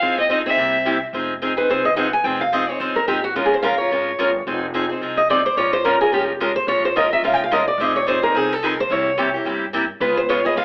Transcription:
Already playing: steel-string acoustic guitar C4, violin F5
0.01 upright bass F2, steel-string acoustic guitar F3 C4 D#4 G#4
0.18 steel-string acoustic guitar C4, violin D#5
0.29 steel-string acoustic guitar F3 C4 D#4 G#4, violin D#5
0.46 steel-string acoustic guitar C4 D#4 G#4, violin E5
0.57 upright bass C2, steel-string acoustic guitar C3 G3 A#3 E4 G4
0.85 steel-string acoustic guitar C3 G3 A#3 E4 G4
1.13 upright bass F1, steel-string acoustic guitar F3 C4 D#4 G#4
1.42 steel-string acoustic guitar F3 C4 D#4 G#4
1.57 steel-string acoustic guitar C4 D#4 G#4 B4
1.69 upright bass C2, steel-string acoustic guitar F3 C4 D#4 G#4 C5
1.85 steel-string acoustic guitar D#5
1.96 steel-string acoustic guitar F3 C4 D#4 G#4 F#5
2.13 steel-string acoustic guitar G#5
2.24 upright bass F1, steel-string acoustic guitar F3 C4 D#4 G#4 G5
2.41 steel-string acoustic guitar F5
2.52 steel-string acoustic guitar F3 C4 D#4 G#4 D#5
2.69 steel-string acoustic guitar C4 D#4 G#4 C#5
2.80 upright bass G1, steel-string acoustic guitar F3 C4 D#4 G#4 C5
2.96 steel-string acoustic guitar A#4
3.08 upright bass G#1, steel-string acoustic guitar F3 C4 D#4 G4 G#4
3.24 steel-string acoustic guitar F#4
3.35 upright bass A#1, steel-string acoustic guitar F3 G#3 C#4 F4 A#4
3.46 steel-string acoustic guitar G#4
3.54 steel-string acoustic guitar C5
3.62 upright bass A#1, steel-string acoustic guitar F3 G#3 C#4 F4 A#4 F5
3.78 steel-string acoustic guitar C#4 F4 A#4 C#5
3.91 upright bass G#1, steel-string acoustic guitar F3 G#3 C#4 F4 A#4
4.19 upright bass G1, steel-string acoustic guitar F3 G#3 C#4 F4 A#4
4.47 upright bass F1, steel-string acoustic guitar F3 C4 D#4 G#4
4.74 steel-string acoustic guitar F3 C4 D#4 G#4
4.89 steel-string acoustic guitar C4 D#4 G#4
5.01 upright bass C2, steel-string acoustic guitar F3 C4 D#4 G#4
5.17 steel-string acoustic guitar D#5
5.29 steel-string acoustic guitar F3 C4 D#4 G#4 D5
5.46 steel-string acoustic guitar C5
5.57 upright bass A#1, steel-string acoustic guitar F3 G#3 C#4 F4 A#4 C#5
5.73 steel-string acoustic guitar C5
5.84 steel-string acoustic guitar F3 G#3 C#4 F4 A#4
6.01 steel-string acoustic guitar C#4 F4 G#4 A#4
6.12 upright bass F1, steel-string acoustic guitar F3 G#3 C#4 F4 G4 A#4
6.40 steel-string acoustic guitar F3 G#3 C#4 F4 A#4
6.56 steel-string acoustic guitar C5
6.67 upright bass A#1, steel-string acoustic guitar F3 G#3 C#4 F4 A#4 C#5
6.85 steel-string acoustic guitar C5
6.96 steel-string acoustic guitar F3 G#3 C#4 F4 A#4 D#5
7.11 steel-string acoustic guitar C#4 F4 A#4 E5
7.22 upright bass F1, steel-string acoustic guitar F3 G#3 C#4 F4 A#4 F5
7.34 steel-string acoustic guitar G5
7.44 steel-string acoustic guitar F5
7.51 steel-string acoustic guitar F3 G#3 C#4 F4 A#4 D#5
7.68 steel-string acoustic guitar D5
7.78 upright bass F1, steel-string acoustic guitar F3 C4 D#4 G#4 D#5
7.96 steel-string acoustic guitar C#5
8.07 steel-string acoustic guitar F3 C4 D#4 G#4 C5
8.22 steel-string acoustic guitar C4 D#4 G#4 A#4
8.34 upright bass C2, steel-string acoustic guitar F3 C4 D#4 G#4
8.52 steel-string acoustic guitar A4
8.63 steel-string acoustic guitar F3 C4 D#4 G#4 A#4
8.80 steel-string acoustic guitar C5
8.90 upright bass C2, steel-string acoustic guitar C3 G3 A#3 E4 G4 C#5
9.18 steel-string acoustic guitar C3 G3 A#3 E4 G4
9.34 steel-string acoustic guitar A#3 E4 G4
9.45 upright bass G2, steel-string acoustic guitar C3 G3 A#3 E4 G4
9.73 steel-string acoustic guitar C3 G3 A#3 E4 G4
10.00 upright bass C#2, steel-string acoustic guitar C#3 G#3 B3 F4 G#4 B4
10.17 steel-string acoustic guitar C5
10.29 steel-string acoustic guitar C#3 G#3 B3 F4 G#4 C#5
10.45 steel-string acoustic guitar B3 F4 G#4 D#5
10.56 upright bass G#1, steel-string acoustic guitar C#3 G#3 B3 F4 G#4 F5

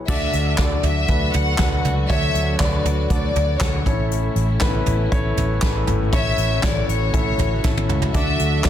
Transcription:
0.08 fingered electric bass D2, string section D3 F#3 A3 F#4, grand piano D3 D4 F#4 A4 D5, violin section E5, kick, crash
0.33 fingered electric bass D2, closed hi-hat
0.58 fingered electric bass D2, grand piano D4 F#4 A4 D5, violin section D5, kick, snare, clap, closed hi-hat
0.83 fingered electric bass D2, violin section E5, closed hi-hat, floor tom
1.08 fingered electric bass D2, grand piano D4 F#4 A4 B4, kick, closed hi-hat
1.33 fingered electric bass D2, violin section F#5, closed hi-hat, floor tom
1.58 fingered electric bass D2, grand piano D4 F#4 A4 B4, kick, snare, clap, closed hi-hat
1.84 fingered electric bass C#2, closed hi-hat, floor tom
2.09 fingered electric bass D2, grand piano D3 D4 F#4 A4 C#5, violin section E5, kick, closed hi-hat
2.34 fingered electric bass D2, closed hi-hat
2.59 fingered electric bass D2, grand piano D4 F#4 A4 B4, violin section D5, kick, snare, clap, closed hi-hat
2.85 fingered electric bass D2, closed hi-hat, floor tom
3.10 fingered electric bass D2, grand piano D4 F#4 A4 D5, violin section D5, kick, closed hi-hat
3.35 fingered electric bass D2, closed hi-hat, floor tom
3.60 fingered electric bass D2, grand piano D4 F#4 A4 D5, violin section C#5, kick, snare, clap, closed hi-hat
3.85 fingered electric bass A1, grand piano A2 C#4 E4 A4 C#5, string section C#3 E3 E4, kick, closed hi-hat, floor tom
4.11 closed hi-hat
4.35 fingered electric bass A1, closed hi-hat
4.60 fingered electric bass A1, grand piano B3 E4 A4 B4, kick, snare, clap, closed hi-hat
4.67 grand piano C#4
4.86 fingered electric bass A1, closed hi-hat, floor tom
5.12 fingered electric bass A1, grand piano C#4 E4 A4 C#5, kick, closed hi-hat
5.37 fingered electric bass A1, closed hi-hat, floor tom
5.62 fingered electric bass A1, grand piano C#4 E4 A4 B4, kick, snare, clap, closed hi-hat
5.87 fingered electric bass G#1, grand piano A2, string section F#4, closed hi-hat, floor tom
6.13 fingered electric bass A1, grand piano C#4 E4 A4 C#5, violin section E5, kick, closed hi-hat
6.37 fingered electric bass A1, closed hi-hat
6.63 fingered electric bass A1, grand piano C#4 E4 A4 C#5, violin section D5, kick, snare, clap, closed hi-hat
6.88 fingered electric bass A1, violin section C#5, closed hi-hat
7.13 fingered electric bass A1, grand piano C#4 E4 A4 E5, kick, closed hi-hat
7.38 fingered electric bass A1, closed hi-hat, floor tom
7.64 fingered electric bass A1, grand piano C#4 E4 A4 E5, kick, snare, clap
7.77 high tom
7.89 fingered electric bass C#2, mid tom
8.02 floor tom
8.14 fingered electric bass D2, string section D3 F#3 A3, grand piano D3 D4 F#4 A4 D5, violin section E5, kick, closed hi-hat
8.39 fingered electric bass D2, closed hi-hat
8.64 fingered electric bass D2, grand piano D4 F#4 A4 E5, violin section D5, kick, snare, clap, closed hi-hat

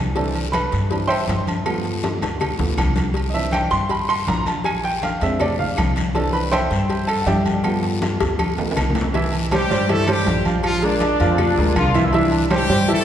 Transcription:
Already playing: upright bass C2
0.15 upright piano E3 C4 D4 A4 A5, cowbell, high conga, low agogo, long guiro
0.35 high conga, low agogo
0.52 upright piano B4 B5, cowbell, high conga, low timbale, low agogo, short guiro, claves
0.72 upright bass G2, cowbell, high conga, short guiro
0.90 upright piano E3 C4 D4, cowbell, high conga, low agogo, long guiro
1.07 upright piano C5 E5 G5 C6, high conga, low agogo, claves
1.28 upright bass G2, cowbell, high conga, low timbale, low agogo, short guiro
1.47 high conga, low agogo, short guiro
1.65 upright piano F3 A3 B3, cowbell, low agogo, long guiro, claves
1.85 cowbell, high conga
2.03 cowbell, high bongo, high conga, low timbale, low agogo, short guiro
2.21 upright bass D2, cowbell, low bongo, high conga, low agogo, short guiro
2.40 cowbell, high bongo, high conga, low conga, low agogo, long guiro, claves
2.58 upright bass D2, upright piano F3 A3 B3, low bongo, high conga, low conga
2.78 upright bass C2, cowbell, high conga, low timbale, low agogo, short guiro, claves
2.96 cowbell, low bongo, high conga, low agogo, short guiro
3.14 cowbell, high conga, low agogo, long guiro
3.30 upright piano D#5
3.34 upright piano E3 C4 D4 E5, high conga, low agogo
3.51 upright piano G5, cowbell, high conga, low timbale, low agogo, short guiro, claves
3.71 upright bass G2, upright piano C6, cowbell, high conga, short guiro
3.89 upright piano B5, cowbell, high conga, low agogo, long guiro
4.09 upright piano C6, high conga, low agogo, claves
4.27 upright bass A#1, upright piano A#5, cowbell, high conga, low timbale, low agogo, short guiro
4.46 upright piano A5, high conga, low agogo, short guiro
4.64 upright piano G#5, cowbell, high conga, low agogo, long guiro, claves
4.84 upright piano G5, cowbell, high conga
5.02 upright piano F5, cowbell, high conga, low timbale, low agogo, short guiro
5.21 upright bass F2, upright piano G#3 C4 D4 E5, cowbell, high conga, low agogo, short guiro
5.40 upright piano D5, cowbell, high conga, low conga, low agogo, long guiro, claves
5.59 upright piano F5, high conga, low conga
5.77 upright bass C2, cowbell, high conga, low timbale, low agogo, short guiro, claves
5.96 cowbell, high conga, low agogo, short guiro
6.14 upright piano E3 C4 D4 A4 A5, cowbell, high conga, low agogo, long guiro
6.33 upright piano B4 B5, high conga, low agogo
6.52 upright piano C5 E5 G5 C6, cowbell, high conga, low timbale, low agogo, short guiro, claves
6.71 upright bass G2, cowbell, high conga, short guiro
6.90 cowbell, high conga, low agogo, long guiro
7.07 upright piano A4 A5, high conga, low agogo, claves
7.22 upright piano F#5
7.26 upright bass G2, upright piano G4 D5 E5 G5, cowbell, high conga, low timbale, low agogo, short guiro
7.46 high conga, low agogo, short guiro
7.63 upright piano F3 A3 B3, cowbell, high conga, low agogo, long guiro, claves
7.83 cowbell, high conga
8.02 cowbell, high bongo, high conga, low timbale, low agogo, short guiro
8.20 upright bass D2, cowbell, high bongo, high conga, low agogo, short guiro
8.39 cowbell, high conga, low agogo, long guiro, claves
8.58 upright bass D2, upright piano F3 A3 B3, high timbale
8.71 high timbale
8.77 upright bass C2, cowbell, low bongo, low conga, low agogo, short guiro, claves
8.90 low conga
8.95 cowbell, low bongo, low timbale, low agogo, short guiro
9.01 low conga
9.14 upright piano E3 E4 E5, cowbell, high conga, low agogo, long guiro
9.33 high conga, low agogo
9.51 upright piano G3 G4 C5, horn section G3 G4, cowbell, high conga, low timbale, low agogo, short guiro, claves
9.71 upright bass G2, upright piano G3 G4 C5, cowbell, high conga, short guiro
9.89 upright piano E3 E4 E5, horn section A3 A4, cowbell, high conga, low agogo, long guiro
10.08 upright piano G3 G4 C5, horn section G3 G4, high conga, low agogo, claves
10.26 upright bass A#1, cowbell, high conga, low timbale, low agogo, short guiro
10.45 upright piano F3 F4 F5, high conga, low agogo, short guiro
10.63 horn section F3 F4, cowbell, high conga, low agogo, long guiro, claves
10.82 upright piano G#3 G#4 A#4, horn section D4 D5, cowbell, high conga
11.00 cowbell, high conga, low timbale, low agogo, short guiro
11.20 upright bass F2, upright piano F3 F4 F5, trombone section A#3, cowbell, high conga, low agogo, short guiro
11.30 trombone section C4
11.38 trombone section D4, cowbell, high conga, low conga, low agogo, long guiro, claves
11.57 upright bass D2, upright piano G#3 G#4 A#4, high conga, low conga
11.67 trombone section F4
11.76 upright bass C2, trombone section F4, cowbell, high conga, low timbale, low agogo, short guiro, claves
11.94 upright piano E3 E4 E5, cowbell, high conga, low agogo, short guiro
12.05 trombone section E4
12.13 upright piano E3 E4 E5, trombone section D4, cowbell, high conga, low agogo, long guiro
12.32 high conga, low agogo
12.50 upright piano G3 G4 C5, horn section G3 G4, cowbell, high conga, low timbale, low agogo, short guiro, claves
12.69 upright bass G2, upright piano G3 G4 C5, cowbell, high conga, short guiro
12.88 upright piano E3 E4 E5, horn section A3 A4, cowbell, high conga, low agogo, long guiro

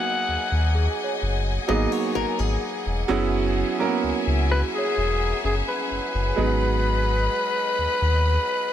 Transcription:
Already playing: grand piano F#3 A#3 B3 D#4 G#4, string section G#4 D#5 F#5 G#5, alto saxophone F#5
0.28 sub bass D#2
0.51 sub bass D#2
0.75 synth bell G#4
1.04 synth bell C#5
1.22 sub bass F#1
1.68 sub bass G#1, grand piano F#3 A#3 B3 D#4 G#4, steel-string acoustic guitar D#5
1.92 steel-string acoustic guitar C#5
2.15 sub bass G#1, steel-string acoustic guitar A#4
2.39 sub bass G#1, steel-string acoustic guitar G#4
2.86 sub bass E1
3.08 sub bass F#1, grand piano F#3 B3 C#4 E4 G#4, string section G#4 E5 G#5
3.78 grand piano F#3 A#3 C#4 E4 A#4
3.85 grand piano B3
4.03 sub bass C#2
4.27 sub bass C#2
4.50 synth bell F#4, alto saxophone B4
4.75 alto saxophone G#4, synth bell C#5
4.97 sub bass E1
5.44 sub bass F#1, synth bell C#4, alto saxophone G#4
5.69 alto saxophone B4
5.91 sub bass F#1
6.14 sub bass F#1
6.36 sub bass G#1, grand piano F#3 G#3 B3 D#4 G#4, string section D#5 B5
7.78 sub bass D#2
8.01 sub bass D#2

